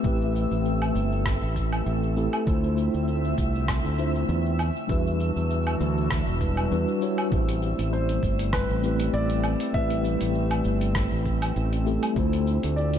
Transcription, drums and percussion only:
0.04 kick, shaker
0.21 shaker
0.35 shaker
0.52 shaker
0.65 shaker
0.82 low woodblock, shaker
0.95 shaker
1.12 shaker
1.26 kick, cross-stick, shaker
1.42 shaker
1.56 kick, shaker
1.73 low woodblock, shaker
1.86 shaker
2.03 shaker
2.17 shaker
2.33 low woodblock, shaker
2.47 kick, shaker
2.64 shaker
2.77 shaker
2.94 shaker
3.08 shaker
3.24 shaker
3.38 kick, shaker
3.55 shaker
3.68 kick, cross-stick, low woodblock, shaker
3.85 shaker
3.98 shaker
4.15 shaker
4.29 shaker
4.46 shaker
4.59 low woodblock, shaker
4.76 shaker
4.89 kick, shaker
5.07 shaker
5.20 shaker
5.37 shaker
5.50 shaker
5.67 low woodblock, shaker
5.81 shaker
5.97 shaker
6.11 kick, cross-stick, shaker
6.27 shaker
6.41 kick, shaker
6.57 low woodblock, shaker
6.72 shaker
6.88 shaker
7.02 shaker
7.18 low woodblock, shaker
7.32 kick, shaker
7.49 closed hi-hat, shaker
7.62 shaker
7.79 closed hi-hat, shaker
7.93 shaker
8.09 closed hi-hat, shaker
8.23 kick, shaker
8.39 closed hi-hat, shaker
8.53 kick, cross-stick, low woodblock, shaker
8.70 shaker
8.83 shaker
9.00 closed hi-hat, shaker
9.14 shaker
9.30 closed hi-hat, shaker
9.44 low woodblock, shaker
9.60 closed hi-hat, shaker
9.74 kick, shaker
9.90 closed hi-hat, shaker
10.05 shaker
10.21 closed hi-hat, shaker
10.35 shaker
10.51 closed hi-hat, low woodblock, shaker
10.64 shaker
10.81 closed hi-hat, shaker
10.95 kick, cross-stick, shaker
11.12 shaker
11.26 kick, shaker
11.42 closed hi-hat, low woodblock, shaker
11.56 shaker
11.73 closed hi-hat, shaker
11.86 shaker
12.03 closed hi-hat, low woodblock, shaker
12.16 kick, shaker
12.33 closed hi-hat, shaker
12.47 shaker
12.63 closed hi-hat, shaker
12.77 shaker
12.94 closed hi-hat, shaker

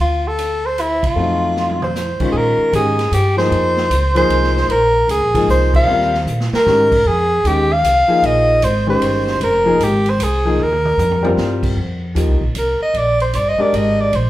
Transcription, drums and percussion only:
0.38 hi-hat pedal, ride
0.78 hi-hat pedal, ride
1.03 kick, ride
1.56 snare
1.69 high tom
1.82 mid tom
1.95 snare, hi-hat pedal
2.20 kick, crash
2.73 hi-hat pedal, ride
2.99 snare, ride
3.13 hi-hat pedal, ride
3.38 snare
3.52 ride
3.77 snare
3.91 hi-hat pedal, ride
4.16 ride
4.30 ride
4.43 snare
4.57 snare
4.70 ride
5.09 hi-hat pedal, ride
5.34 kick, ride
5.49 hi-hat pedal
5.74 kick, crash
6.01 snare
6.14 snare
6.27 hi-hat pedal
6.40 snare
6.53 snare
6.67 snare
6.92 kick, crash
7.45 hi-hat pedal, ride
7.84 hi-hat pedal, ride
8.23 ride
8.62 hi-hat pedal, ride
9.02 ride
9.27 snare
9.41 ride
9.80 hi-hat pedal, ride
10.06 ride
10.20 hi-hat pedal, ride
10.59 mid tom
10.72 mid tom
10.85 mid tom
10.99 floor tom, hi-hat pedal
11.11 floor tom
11.25 floor tom
11.37 snare
11.63 kick, crash
12.16 hi-hat pedal, ride
12.41 kick
12.55 hi-hat pedal, ride
12.94 ride
13.20 ride
13.33 hi-hat pedal, ride
13.74 ride
14.13 ride

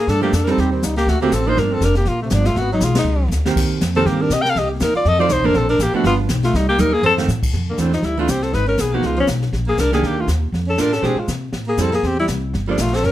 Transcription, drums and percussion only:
0.08 brush sweep, kick, snare
0.33 kick, snare, hi-hat pedal
0.47 snare
0.58 brush sweep, kick, snare
0.83 kick, snare, hi-hat pedal
0.97 snare
1.07 brush sweep, kick, snare
1.32 kick, snare, hi-hat pedal
1.57 brush sweep, kick, snare
1.81 kick, snare, hi-hat pedal
1.95 snare
2.05 brush sweep, kick, snare
2.30 kick, snare, hi-hat pedal
2.45 snare
2.56 brush sweep, kick, snare
2.80 kick, snare, hi-hat pedal
2.95 snare, ride
3.06 brush sweep
3.31 snare, hi-hat pedal
3.46 snare
3.56 brush sweep, kick, snare, crash
3.81 snare, hi-hat pedal
4.06 brush sweep, kick, snare
4.30 kick, snare, hi-hat pedal
4.45 snare
4.56 brush sweep, kick, snare
4.80 kick, snare, hi-hat pedal
5.05 brush sweep, kick, snare
5.29 kick, snare, hi-hat pedal
5.54 brush sweep, kick, snare
5.79 kick, snare, hi-hat pedal
6.04 brush sweep, kick, snare
6.28 kick, snare, hi-hat pedal
6.43 snare
6.54 brush sweep, kick, snare
6.78 hi-hat pedal, high tom
7.03 floor tom
7.18 snare
7.29 snare, hi-hat pedal
7.43 kick, crash
7.53 brush sweep, kick, snare
7.77 kick, snare, hi-hat pedal
7.93 snare
8.03 brush sweep, kick, snare
8.28 kick, snare, hi-hat pedal
8.42 snare
8.53 brush sweep, kick, snare
8.77 kick, snare, hi-hat pedal
9.03 brush sweep, kick, snare
9.27 kick, snare, hi-hat pedal
9.42 snare
9.53 brush sweep, kick, snare
9.78 kick, snare, hi-hat pedal
9.92 snare
10.03 brush sweep, kick, snare
10.28 kick, snare, hi-hat pedal
10.53 brush sweep, kick, snare
10.78 kick, snare, hi-hat pedal
10.93 snare
11.03 brush sweep, kick, snare
11.28 kick, snare, hi-hat pedal
11.53 brush sweep, kick, snare
11.77 kick, snare, hi-hat pedal
11.93 snare
12.03 brush sweep, kick, snare
12.28 kick, snare, hi-hat pedal
12.54 brush sweep, kick, snare
12.78 kick, snare, hi-hat pedal
12.87 snare
12.93 snare
12.96 snare
13.04 brush sweep, kick, snare

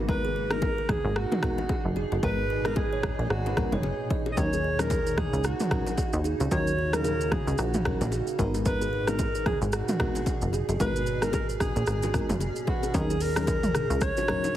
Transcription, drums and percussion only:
0.09 kick, low conga
0.51 cross-stick, low bongo
0.62 kick, high bongo
0.89 kick, cross-stick, mid tom, low bongo, low conga
1.16 cross-stick
1.32 mid tom, low bongo
1.43 kick, cross-stick, low conga
1.58 low bongo
1.69 kick, high bongo
1.96 high bongo
2.12 high bongo
2.23 kick, low conga
2.65 cross-stick, low bongo
2.76 kick, high bongo
3.03 kick, cross-stick, low bongo, low conga
3.30 cross-stick
3.47 low bongo
3.57 kick, cross-stick, low conga
3.72 mid tom, low bongo
3.83 high bongo
4.10 kick, high bongo
4.26 high bongo
4.37 kick, low conga, shaker
4.53 shaker
4.79 cross-stick, low bongo, shaker
4.90 kick, high bongo, shaker
5.07 shaker
5.18 kick, cross-stick, mid tom, low bongo, low conga
5.33 shaker
5.44 cross-stick, shaker
5.60 mid tom, low bongo, shaker
5.71 kick, cross-stick, low conga
5.87 low bongo, shaker
5.97 kick, high bongo, shaker
6.13 shaker
6.24 high bongo, shaker
6.40 high bongo, shaker
6.51 kick, low conga, shaker
6.67 shaker
6.93 cross-stick, low bongo, shaker
7.04 high bongo, shaker
7.21 shaker
7.32 kick, cross-stick, mid tom, low bongo, low conga
7.48 shaker
7.58 cross-stick, shaker
7.74 mid tom, low bongo, shaker
7.85 kick, cross-stick, low conga
8.01 low bongo, shaker
8.12 high bongo, shaker
8.27 shaker
8.39 kick, high bongo, shaker
8.55 high bongo, shaker
8.65 kick, low conga, shaker
8.81 shaker
9.07 cross-stick, low bongo, shaker
9.19 kick, high bongo, shaker
9.35 shaker
9.46 kick, cross-stick, mid tom, low bongo, low conga
9.62 shaker
9.72 cross-stick, shaker
9.88 mid tom, low bongo, shaker
10.00 kick, cross-stick, low conga
10.15 low bongo, shaker
10.26 kick, high bongo, shaker
10.41 shaker
10.53 high bongo, shaker
10.69 high bongo, shaker
10.80 kick, low conga, shaker
10.96 shaker
11.06 shaker
11.22 cross-stick, low bongo, shaker
11.33 kick, high bongo, shaker
11.49 shaker
11.60 kick, cross-stick, low bongo, low conga, shaker
11.76 shaker
11.87 cross-stick, shaker
12.03 low bongo, shaker
12.14 kick, cross-stick, low conga, shaker
12.29 mid tom, low bongo, shaker
12.40 high bongo, shaker
12.56 shaker
12.67 kick, high bongo
12.83 high bongo, shaker
12.94 kick, low conga, shaker
13.10 shaker
13.21 open hi-hat, shaker
13.36 cross-stick, low bongo, shaker
13.47 kick, high bongo, shaker
13.63 mid tom, shaker
13.75 cross-stick, low bongo, low conga, shaker
13.90 shaker
14.01 kick, cross-stick, shaker
14.17 low bongo, shaker
14.28 cross-stick, low conga
14.44 low bongo, shaker

